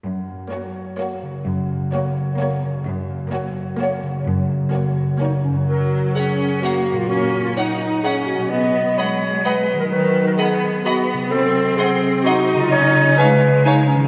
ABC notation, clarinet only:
X:1
M:3/4
L:1/16
Q:1/4=128
K:F#
V:1 name="Clarinet"
z12 | z12 | z12 | z8 D2 C2 |
A4 G4 F3 E | F3 E D4 G2 F2 | d4 c4 B3 A | B3 A G4 F2 z2 |
=A4 G4 _G3 E | c4 B4 D2 C2 |]